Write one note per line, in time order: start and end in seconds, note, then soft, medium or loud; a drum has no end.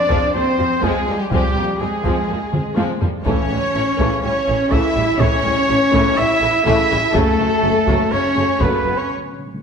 0.00 0.35 D4 medium
0.00 0.34 D5 medium
0.09 0.19 F2 medium
0.09 0.32 F3 medium
0.09 0.32 G#3 medium
0.09 0.32 C4 medium
0.09 taiko medium
0.34 0.43 F2 soft
0.34 0.42 F3 soft
0.34 0.43 G3 soft
0.34 0.43 A#3 soft
0.34 0.82 C4 medium
0.34 0.84 C4 medium
0.34 0.82 C5 medium
0.34 0.85 C5 medium
0.59 0.67 F2 soft
0.59 0.67 F3 soft
0.59 0.67 G#3 soft
0.59 0.68 C4 soft
0.82 0.92 F2 medium
0.82 1.05 F3 medium
0.82 1.19 G#3 medium
0.82 1.20 G#3 medium
0.82 1.07 G#3 medium
0.82 1.07 C4 medium
0.82 1.19 G#4 medium
0.82 1.20 G#4 medium
0.82 taiko medium
1.07 1.16 F2 soft
1.07 1.15 F3 soft
1.07 1.17 G3 soft
1.07 1.17 A#3 soft
1.19 1.31 G3 soft
1.19 1.32 G3 medium
1.19 1.31 G4 medium
1.30 1.41 F2 medium
1.30 1.54 F3 medium
1.30 1.79 G3 medium
1.30 1.80 G3 medium
1.30 1.54 G#3 medium
1.30 1.54 C4 medium
1.30 1.82 G4 medium
1.30 1.79 G4 medium
1.30 taiko medium
1.55 1.64 F2 soft
1.55 1.64 F3 soft
1.55 1.64 G3 soft
1.55 1.64 A#3 soft
1.80 1.88 F2 soft
1.80 1.88 F3 soft
1.80 2.77 G#3 soft
1.80 1.89 G#3 soft
1.80 2.78 G#3 soft
1.80 1.89 C4 soft
1.80 2.76 G#4 soft
1.80 2.78 G#4 medium
2.04 2.13 F2 medium
2.04 2.27 F3 medium
2.04 2.27 G#3 soft
2.04 2.27 C4 soft
2.04 taiko medium
2.28 2.37 F2 soft
2.28 2.36 F3 soft
2.28 2.37 G3 soft
2.28 2.37 A#3 soft
2.53 2.62 F2 soft
2.53 2.61 F3 soft
2.53 2.61 G#3 soft
2.53 2.61 C4 soft
2.53 taiko mid medium
2.76 2.86 F2 medium
2.76 2.99 F3 medium
2.76 2.99 G#3 medium
2.76 2.99 C4 medium
2.76 taiko high medium
3.01 3.11 F2 soft
3.01 3.09 F3 soft
3.01 3.09 G3 soft
3.01 3.09 A#3 soft
3.01 taiko low medium
3.25 3.35 A1 medium
3.25 3.95 A2 medium
3.25 3.48 C#3 medium
3.25 3.48 E3 soft
3.25 3.48 A3 medium
3.25 4.19 C#4 medium
3.25 4.20 C#4 medium
3.25 4.19 C#5 medium
3.25 taiko medium
3.49 3.59 A1 soft
3.49 3.57 C#3 soft
3.49 3.57 E3 soft
3.49 3.59 G3 soft
3.74 3.84 A1 soft
3.74 3.83 C#3 soft
3.74 3.83 E3 soft
3.74 3.83 A3 soft
3.99 4.08 A1 medium
3.99 4.22 C#3 medium
3.99 4.22 E3 medium
3.99 4.22 A3 medium
3.99 taiko medium
4.22 4.32 A1 soft
4.22 4.31 C#3 soft
4.22 4.31 E3 soft
4.22 4.31 G3 soft
4.22 4.70 C#4 medium
4.22 4.71 C#4 medium
4.22 4.71 C#5 medium
4.22 4.73 C#5 medium
4.47 4.56 A1 soft
4.47 4.55 C#3 soft
4.47 4.56 E3 soft
4.47 4.56 A3 soft
4.71 4.80 A1 medium
4.71 4.94 C#3 medium
4.71 4.94 E3 medium
4.71 4.95 A3 medium
4.71 5.20 E4 medium
4.71 5.21 E4 medium
4.71 5.19 E5 medium
4.71 5.21 E5 medium
4.71 taiko medium
4.95 5.04 A1 soft
4.95 5.04 C#3 medium
4.95 5.04 E3 medium
4.95 5.03 G3 soft
5.19 5.28 A1 medium
5.19 5.43 C#3 medium
5.19 5.43 E3 medium
5.19 5.43 A3 medium
5.19 6.17 C#4 medium
5.19 6.18 C#4 medium
5.19 6.19 C#5 medium
5.19 6.16 C#5 medium
5.19 taiko medium
5.44 5.52 A1 medium
5.44 5.53 C#3 medium
5.44 5.53 E3 soft
5.44 5.53 G3 soft
5.69 5.77 A1 soft
5.69 5.77 C#3 medium
5.69 5.77 E3 medium
5.69 5.78 A3 medium
5.93 6.02 A1 medium
5.93 6.16 C#3 medium
5.93 6.16 E3 medium
5.93 6.16 A3 medium
5.93 taiko medium
6.17 6.26 A1 soft
6.17 6.26 C#3 medium
6.17 6.26 E3 medium
6.17 6.26 G3 medium
6.17 6.65 E4 medium
6.17 6.65 E5 medium
6.17 6.66 E5 loud
6.41 6.50 A1 medium
6.41 6.51 C#3 medium
6.41 6.50 E3 soft
6.41 6.49 A3 medium
6.66 6.74 A1 medium
6.66 6.89 C#3 medium
6.66 6.89 E3 medium
6.66 6.89 A3 medium
6.66 7.14 E4 medium
6.66 7.14 E5 medium
6.66 7.14 E5 loud
6.66 taiko medium
6.91 6.99 A1 soft
6.91 6.99 C#3 medium
6.91 6.99 E3 medium
6.91 6.99 G3 medium
7.14 7.22 F#1 medium
7.14 7.38 C#3 medium
7.14 7.38 F#3 medium
7.14 7.37 A3 medium
7.14 8.12 A3 medium
7.14 8.13 A3 medium
7.14 8.12 A4 medium
7.14 8.13 A4 medium
7.14 taiko loud
7.39 7.47 F#1 medium
7.39 7.48 C#3 soft
7.39 7.48 F#3 medium
7.39 7.48 G#3 soft
7.63 7.71 F#1 medium
7.63 7.72 C#3 medium
7.63 7.71 F#3 soft
7.63 7.72 A3 soft
7.87 7.96 F#1 medium
7.87 8.10 C#3 medium
7.87 8.10 F#3 medium
7.87 8.11 A3 medium
7.87 taiko medium
8.12 8.20 F#1 soft
8.12 8.21 C#3 soft
8.12 8.20 F#3 soft
8.12 8.22 G#3 soft
8.12 8.60 C#4 medium
8.12 8.61 C#4 medium
8.12 8.60 C#5 medium
8.12 8.63 C#5 medium
8.36 8.45 F#1 soft
8.36 8.44 C#3 soft
8.36 8.44 F#3 soft
8.36 8.47 A3 soft
8.60 8.69 F#1 medium
8.60 8.83 C#3 medium
8.60 8.83 F#3 medium
8.60 8.84 A3 medium
8.60 8.97 B3 medium
8.60 8.98 B3 medium
8.60 8.98 B4 medium
8.60 9.00 B4 medium
8.60 taiko medium
8.84 8.94 F#1 soft
8.84 8.92 C#3 soft
8.84 8.92 F#3 soft
8.84 8.95 G#3 soft
8.97 9.09 C#4 medium
8.97 9.10 C#4 medium
8.97 9.10 C#5 soft
8.97 9.10 C#5 medium
9.09 9.16 D3 soft
9.17 9.23 D3 soft
9.24 9.31 D3 soft
9.32 9.38 D3 soft
9.39 9.46 D3 soft
9.47 9.53 D3 soft
9.54 9.61 D3 soft